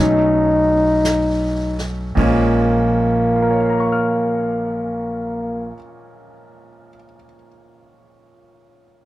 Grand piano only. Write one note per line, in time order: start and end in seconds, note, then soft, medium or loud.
0.00 2.16 F#3 soft
0.00 2.17 A3 soft
0.00 2.17 C#4 soft
0.00 2.18 D#4 soft
2.15 5.73 A#2 soft
2.15 5.74 F3 soft
2.15 5.75 G#3 soft
2.15 5.76 A#3 soft
2.15 5.76 C#4 soft
3.35 6.89 F4 soft
3.42 6.96 A#4 soft
3.50 7.04 C#5 soft
3.60 7.14 F5 soft
3.70 7.23 A#5 soft
3.80 7.34 C#6 soft
3.92 7.46 F6 soft